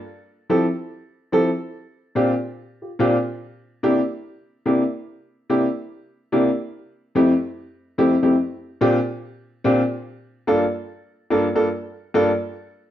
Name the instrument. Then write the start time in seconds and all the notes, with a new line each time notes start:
grand piano
0.50 F3 C4 E4 G4 A4
1.32 F3 C4 E4 G4 A4
2.15 A#2 C4 D4 F4 G4
2.82 F4 G4
2.99 A#2 C4 D4 F4 G4
3.83 C3 A#3 D4 E4 G4
4.66 C3 A#3 D4 E4 G4
5.50 C3 A#3 D4 E4 G4
6.32 C3 A#3 D4 E4 G4
7.15 F2 A3 C4 E4 G4
7.98 F2 A3 C4 E4 G4
8.22 F2 A3 C4 E4 G4
8.81 A#2 C4 D4 F4 G4
9.64 A#2 C4 D4 F4 G4
10.47 G2 A#3 D4 F4 A4
11.30 G2 A#3 D4 F4 A4
11.55 G2 A#3 D4 F4 A4
12.14 G2 A#3 D4 F4 A4